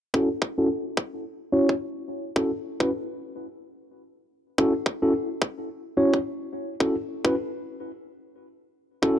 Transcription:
0.14 tine electric piano C#4 E4 F#4 A4, kick
0.42 kick
0.58 tine electric piano C#4 E4 F#4 A4
0.97 kick
1.52 tine electric piano C#4 E4 F#4 C#5
1.69 kick
2.36 tine electric piano C#4 E4 F#4 A4, kick
2.80 tine electric piano C#4 E4 F#4 B4, kick
4.58 tine electric piano C#4 E4 F#4 A4, kick
4.86 kick
5.02 tine electric piano C#4 E4 F#4 A4
5.42 kick
5.97 tine electric piano C#4 E4 F#4 C#5
6.14 kick
6.80 tine electric piano C#4 E4 F#4 A4, kick
7.25 tine electric piano C#4 E4 F#4 B4, kick
9.02 tine electric piano C#4 E4 F#4 A4, kick

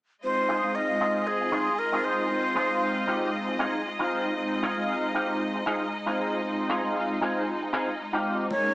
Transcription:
0.23 analog polysynth G#3 C4 D#4 F4 C5, string section G#3 F4 D#5, flute C5
0.49 clean electric guitar D#4 F4 G#4
0.63 analog polysynth G#3 C4 D#4 F4 F5
0.75 flute D#5
1.00 analog polysynth G#3 C4 D#4 F4 C5, clean electric guitar D#4 F4 G#4
1.27 flute G#4
1.41 muted clean electric guitar stroke
1.52 analog polysynth G#3 C4 D#4 F4 C5, clean electric guitar D#4 F4 G#4
1.79 flute A#4
1.92 analog polysynth G#3 C4 D#4 F4 C5, clean electric guitar D#4 F4 G#4
2.04 flute C5
2.30 analog polysynth G#3 C4 D#4 F4 C5
2.56 clean electric guitar D#4 F4 G#4
2.70 analog polysynth G#3 C4 D#4 F4 F5
3.07 analog polysynth G#3 C4 D#4 F4 C5, clean electric guitar D#4 F4 G4
3.48 muted clean electric guitar stroke
3.59 analog polysynth G#3 C4 D#4 F4 C5, clean electric guitar D#4 F4 G#4
3.99 analog polysynth G#3 C4 D#4 F4 C5, clean electric guitar D#4 F4 G#4
4.37 analog polysynth G#3 C4 D#4 F4 C5, string section D#4
4.63 clean electric guitar D#4 F4 G#4
4.77 analog polysynth G#3 C4 D#4 F4 F5
5.14 analog polysynth G#3 C4 D#4 F4 C5, clean electric guitar D#4 F4 G4
5.54 muted clean electric guitar stroke
5.66 analog polysynth G#3 C4 D#4 F4 C5, clean electric guitar D#4 F4 G#4
6.06 analog polysynth G#3 C4 D#4 F4 C5, clean electric guitar D#4 F4 G#4
6.44 analog polysynth G#3 C4 D#4 F4 C5
6.69 clean electric guitar D#4 F4 G#4
6.83 analog polysynth G#3 C4 D#4 F4 F5
7.21 analog polysynth G#3 C4 D#4 F4 C5, clean electric guitar D#4 F4 G#4
7.61 muted clean electric guitar stroke
7.73 analog polysynth G#3 C4 D#4 F4 C5, clean electric guitar D#4 F4 G#4
8.13 analog polysynth G#3 C4 D#4 F4 C5, clean electric guitar D#4 F4 G4
8.50 analog polysynth G#3 A#3 C#4 D#4 A#4, string section G#3 C#4, flute C#5, high conga

